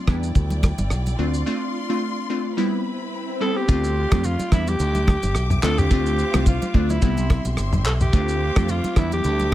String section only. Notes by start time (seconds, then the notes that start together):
Already playing: D5
0.08 E4 G5
1.19 F4 C6
2.58 E4 B4 B5
3.69 F4 D5 C6
4.52 G4 E5 D6
5.63 C5 F5
7.02 G4 E5 C6
8.13 C5 F5 D6
8.96 G4 E5 D6